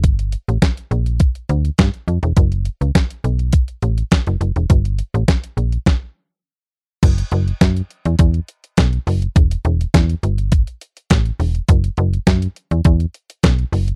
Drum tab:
CC |----------------|----------------|----------------|x---------------|
HH |xxxxxxxxxxxxxxxx|xxxxxxxxxxxxxxxx|xxxxxxxx--------|xxxxxxxxxxxxxxox|
SD |----o-------o---|----o-------o---|----o---o-------|----o-------o---|
BD |o---o---o---o---|o---o---o---o---|o---o---o-------|o---o---o---o---|

CC |----------------|----------------|
HH |xxxxxxxxxxxxxxox|xxxxxxxxxxxxxxox|
SD |----o-------o---|----o-------o---|
BD |o---o---o---o---|o---o---o---o---|